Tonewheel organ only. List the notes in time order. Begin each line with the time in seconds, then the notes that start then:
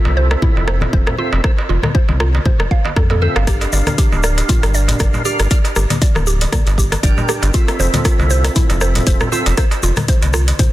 Already playing: C4 F4 A4 E5
1.18 C4 F4 A4 E5
1.44 F4 A4 E5
3.22 C4 F4 A4 E5
3.47 D4 G4 A#4 F5
5.25 D4 G4 A#4 F5
5.51 D4 G4 A#4 F5
7.03 D4 G4 A#4 G5
7.54 C4 F4 A4 E5
9.32 C4 F4 A4 E5
9.57 C4 F4 A4 E5